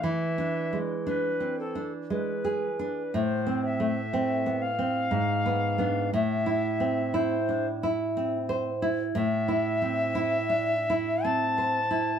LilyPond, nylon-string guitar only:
\new Staff \with { instrumentName = "Nylon-string guitar" } { \time 3/4 \key a \minor \tempo 4 = 59 \tuplet 3/2 { e8 d'8 gis8 d'8 c'8 d'8 gis8 gis'8 d'8 } | \tuplet 3/2 { a,8 c'8 a8 c'8 b8 c'8 gis,8 b8 <b d'>8 } | \tuplet 3/2 { a,8 e'8 c'8 e'8 d'8 e'8 c'8 c''8 e'8 } | \tuplet 3/2 { a,8 e'8 c'8 e'8 d'8 e'8 c'8 c''8 e'8 } | }